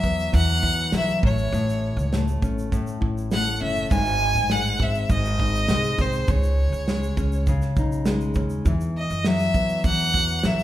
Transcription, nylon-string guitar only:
0.00 0.32 E3 medium
0.00 0.91 F#3 medium
0.00 1.29 B3 medium
0.33 3.83 E3 medium
0.63 3.00 E4 medium
0.92 1.28 F#3 medium
1.23 1.52 A2 medium
1.53 2.71 A2 medium
2.12 3.31 A3 medium
2.43 3.60 C#4 medium
2.73 3.91 A2 medium
3.01 3.96 E4 medium
3.33 3.97 A3 medium
3.61 3.97 C#4 medium
3.91 5.10 G#2 medium
4.51 5.70 G#3 medium
4.81 5.99 C4 medium
5.11 6.29 G#2 medium
5.41 7.21 D#4 medium
5.71 6.89 G#3 medium
6.00 6.35 C4 medium
6.29 7.47 C#3 medium
6.90 8.06 G#3 medium
7.18 8.35 C#4 medium
7.48 8.73 C#3 medium
7.79 8.73 D#4 medium
8.07 8.72 G#3 medium
8.36 8.72 C#4 medium
8.67 9.86 E3 medium
9.26 10.44 F#3 medium
9.55 10.63 B3 medium
9.86 10.63 E3 medium
10.15 10.63 F#4 medium
10.45 10.63 F#3 medium

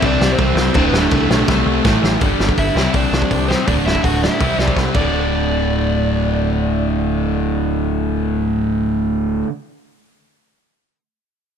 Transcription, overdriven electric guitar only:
0.04 0.29 D4 medium
0.04 0.33 D5 loud
0.31 0.73 C4 medium
0.31 0.76 C5 loud
0.77 0.85 C4 medium
0.77 0.85 C5 medium
0.88 0.95 B3 medium
0.88 0.97 B4 medium
0.97 2.00 A3 medium
0.97 2.04 A4 medium
2.59 2.93 E4 medium
2.59 2.95 E5 medium
2.95 3.46 D4 medium
2.95 3.51 D5 medium
3.48 3.66 C4 medium
3.48 3.67 C5 medium
3.67 3.72 D4 medium
3.67 3.73 D5 loud
3.86 4.03 E4 medium
3.86 4.04 E5 medium
4.03 4.20 F#4 medium
4.03 4.22 F#5 medium
4.24 4.74 E4 medium
4.24 4.73 E5 medium
4.95 9.43 D5 medium

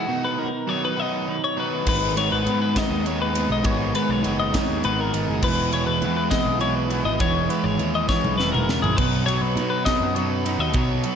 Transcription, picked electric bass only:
1.86 2.28 G#1 loud
2.32 2.47 G#1 medium
2.46 2.74 G#2 medium
2.90 3.46 D#2 medium
3.49 3.65 B1 medium
3.65 3.93 G#1 loud
4.09 4.23 B1 medium
4.25 4.52 F#1 medium
4.69 4.83 D#2 medium
4.84 5.12 G#1 loud
5.14 5.27 G#1 loud
5.28 5.42 F#1 medium
5.42 5.84 E1 loud
5.87 6.04 E1 medium
6.02 6.30 E2 medium
6.45 7.01 B1 medium
7.05 7.20 G#1 loud
7.20 7.48 E1 loud
7.64 7.78 G#1 medium
7.78 8.06 D#2 medium
8.24 8.37 B1 medium
8.38 8.66 E1 medium
8.67 8.81 E1 medium
8.83 8.97 A#1 medium
8.98 9.39 B1 loud
9.41 9.58 B1 medium
9.56 9.84 B2 medium
10.00 10.56 F#2 medium
10.59 10.75 D#2 loud
10.75 11.02 B1 loud

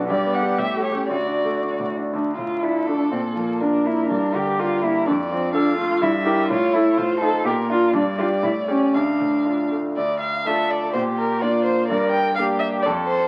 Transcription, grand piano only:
0.00 0.12 B1 soft
0.00 0.12 B3 soft
0.00 0.12 D4 soft
0.00 0.12 F#4 soft
0.10 0.57 G2 soft
0.26 0.52 B3 soft
0.42 0.57 D4 soft
0.42 0.57 G4 soft
0.58 1.08 A2 soft
0.76 1.03 A3 soft
0.92 1.08 C#4 soft
0.92 1.08 G4 soft
1.09 2.10 D2 soft
1.27 1.55 D4 soft
1.45 1.72 A3 soft
1.62 1.90 D4 soft
1.79 2.07 A2 soft
1.97 2.13 D4 soft
2.13 3.08 D2 soft
2.38 2.77 A2 soft
2.62 2.84 D4 soft
2.62 2.85 F4 soft
2.88 3.12 A3 soft
3.12 4.07 A#2 soft
3.35 3.75 F3 soft
3.61 3.83 D4 soft
3.61 3.83 F4 soft
3.85 4.10 A#3 soft
4.10 5.04 G2 soft
4.34 4.73 D3 soft
4.59 4.80 D4 soft
4.59 4.81 G4 soft
4.82 5.06 A#3 soft
5.07 5.99 F2 soft
5.31 5.69 F3 soft
5.54 5.75 F4 soft
5.54 5.76 A4 soft
5.78 6.02 A3 soft
6.01 6.48 G2 medium
6.26 6.47 E4 soft
6.26 6.48 A#4 soft
6.50 6.96 A2 medium
6.75 6.96 E4 soft
6.75 6.96 A4 soft
6.98 7.44 A2 soft
7.22 7.43 D#4 soft
7.22 7.44 F4 soft
7.45 7.92 A#2 soft
7.69 7.91 D4 soft
7.69 7.91 F4 soft
7.93 8.41 G2 medium
8.18 8.41 D4 soft
8.18 8.41 G4 soft
8.43 8.92 A2 soft
8.68 8.91 C#4 soft
8.68 8.91 G4 soft
8.94 9.93 D2 soft
9.20 9.61 A2 soft
9.45 9.68 D4 soft
9.45 9.68 F4 soft
9.71 9.96 A3 soft
9.97 10.44 D2 soft
10.46 10.90 A3 soft
10.46 10.90 D4 soft
10.46 10.90 F4 soft
10.94 11.40 A#2 soft
11.42 11.86 A#3 soft
11.42 11.86 D4 soft
11.42 11.86 F4 soft
11.90 12.36 G2 medium
12.38 12.81 A#3 soft
12.38 12.81 D4 soft
12.38 12.82 G4 soft
12.86 13.28 F2 medium

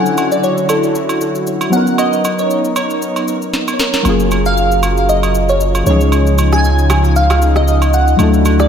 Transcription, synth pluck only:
0.00 0.33 F#5 loud
0.32 0.44 D5 medium
0.44 0.55 C#5 medium
0.70 1.43 A4 medium
1.73 1.84 F#5 loud
1.99 2.40 D#5 loud
2.39 2.74 C#5 medium
2.77 3.25 C#5 medium
3.74 3.80 C#5 medium
3.80 4.48 A#4 medium
4.46 5.11 F5 loud
5.09 5.50 D#5 medium
5.49 5.86 C#5 medium
5.87 6.55 C#5 medium
6.53 7.18 G#5 loud
7.16 7.53 F5 loud
7.57 7.95 D#5 loud
7.94 8.62 F#5 medium
8.60 8.68 D5 medium

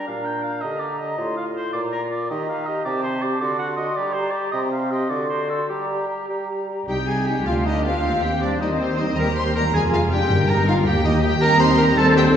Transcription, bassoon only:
0.08 0.62 A#2 soft
0.64 1.17 D3 medium
1.18 1.73 A2 medium
1.74 2.29 A#2 medium
2.31 2.79 D#3 medium
2.86 3.34 C3 medium
3.41 3.90 D3 medium
3.97 4.47 G3 medium
4.53 5.04 C3 medium
5.10 5.62 D3 medium
5.70 6.14 G3 medium
6.30 6.82 G3 soft

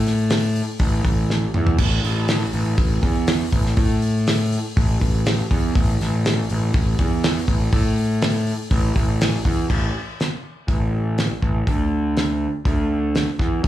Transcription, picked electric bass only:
0.00 0.60 A2 medium
0.80 1.00 A1 loud
1.05 1.45 A1 medium
1.56 1.75 E2 loud
1.78 1.99 A1 loud
2.04 2.44 A1 medium
2.54 2.74 A1 loud
2.78 2.98 A1 loud
3.03 3.42 E2 medium
3.53 3.72 A1 medium
3.77 4.56 A2 medium
4.77 4.96 A1 loud
5.01 5.40 A1 loud
5.51 5.70 E2 loud
5.76 5.95 A1 loud
6.02 6.40 A1 medium
6.51 6.70 A1 loud
6.74 6.93 A1 loud
6.99 7.38 E2 loud
7.48 7.67 A1 medium
7.73 8.51 A2 medium
8.71 8.90 A1 loud
8.96 9.35 A1 medium
9.45 9.65 E2 medium
9.70 9.89 A1 medium
10.68 11.27 A1 medium
11.42 11.62 A1 medium
11.68 12.46 D2 medium
12.65 13.24 D2 loud
13.39 13.59 E2 medium
13.63 13.68 F#2 medium

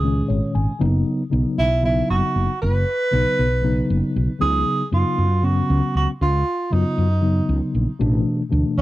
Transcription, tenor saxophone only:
0.00 0.55 G#4 loud
1.59 1.83 E4 medium
1.85 2.09 E4 medium
2.11 2.58 F#4 medium
2.62 4.12 B4 loud
4.41 4.89 G#4 loud
4.94 5.47 F4 medium
5.45 5.96 F#4 medium
5.97 6.08 F#4 medium
6.22 6.75 F4 medium
6.73 7.75 D#4 medium
8.78 8.82 C#4 medium

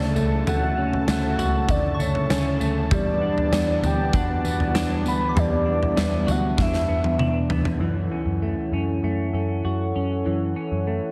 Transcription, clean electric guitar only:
0.00 0.14 A3 medium
0.00 1.38 F#4 medium
0.16 0.46 A3 medium
0.47 1.06 A3 medium
0.77 1.69 C#4 medium
1.08 1.98 A3 medium
1.39 4.89 F#4 medium
1.99 2.59 A3 medium
2.30 2.97 C#4 medium
2.60 2.97 A3 medium
2.91 5.34 G3 medium
3.21 4.12 D4 medium
3.52 4.43 B3 medium
4.13 4.73 D4 medium
4.44 5.04 B3 medium
4.74 5.65 D4 medium
5.05 5.95 B3 medium
5.35 7.80 G3 medium
5.66 6.56 D4 medium
5.96 6.87 B3 medium
6.27 9.64 F#4 medium
6.57 7.18 D4 medium
6.88 7.49 B3 medium
7.19 7.87 D4 medium
7.50 7.87 B3 medium
7.80 10.25 E3 medium
8.12 8.72 C#4 soft
8.42 9.03 A3 medium
8.73 9.33 C#4 medium
9.04 10.86 A3 medium
9.34 9.95 C#4 medium
9.65 11.12 F#4 medium
9.96 10.55 C#4 soft
10.26 11.12 E3 medium
10.56 11.12 C#4 soft
10.87 11.12 A3 medium

